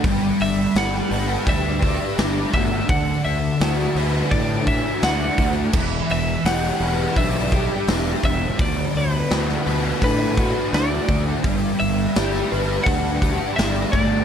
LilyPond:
<<
  \new Staff \with { instrumentName = "Clean electric guitar" } { \time 4/4 \key d \major \tempo 4 = 84 r8 e''8 fis''4 e''4. e''8 | fis''8 e''4. d''8 e''8 fis''8. r16 | r8 e''8 fis''4 e''4. e''8 | d''8 b'4. b'4 d''8. r16 |
r8 e''4. fis''4 e''8 d''8 | }
  \new Staff \with { instrumentName = "Distorted electric guitar" } { \time 4/4 \key d \major g4 g'8 b'8 d'8 g'8 d'8 a8 | d4 fis'8 b'8 d'8 fis'8 d'8 a8 | e4 g'8 b'8 d'8 g'8 d'8 b8 | d4 fis'8 b'8 d'8 fis'8 d'8 a8 |
g4 g'8 b'8 d'8 g'8 d'8 a8 | }
  \new Staff \with { instrumentName = "Fingered electric bass" } { \clef bass \time 4/4 \key d \major g,,8 g,,8 g,,8 g,,8 d,4 g,,8 g,,8 | d,8 d,8 d,8 d,8 a,4 d,8 d,8 | e,,8 e,,8 e,,8 e,,8 b,,4 e,,8 e,,8 | d,8 d,8 d,8 d,8 a,4 d,8 d,8 |
g,,8 g,,8 g,,8 g,,8 d,4 g,,8 g,,8 | }
  \new DrumStaff \with { instrumentName = "Drums" } \drummode { \time 4/4 <hho bd>8 hho8 <hho sn>16 sn16 hho8 <hho bd>8 <hho bd>8 <hho sn>8 <hho bd>8 | <hho bd>8 hho8 <hho sn>16 sn16 hho8 <hho bd>8 <hho bd>8 <hho sn>8 <hho bd>8 | <cymc bd>8 hho8 <hho sn>16 sn16 hho8 <hho bd>8 <hho bd>8 <hho sn>8 <hho bd>8 | <hho bd>8 hho8 <hho sn>16 sn16 hho8 <hho bd>8 <hho bd>8 <hho sn>8 <hho bd>8 |
<hho bd>8 hho8 <hho sn>16 sn16 hho8 <hho bd>8 <hho bd>8 <hho sn>8 <hho bd>8 | }
>>